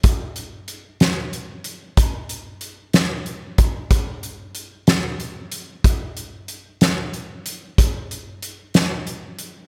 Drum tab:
HH |xxxxxx|xxxxxx|xxxxxx|xxxxxx|
SD |---o--|---o--|---o--|---o--|
BD |o-----|o----o|o-----|o-----|

HH |xxxxxx|
SD |---o--|
BD |o-----|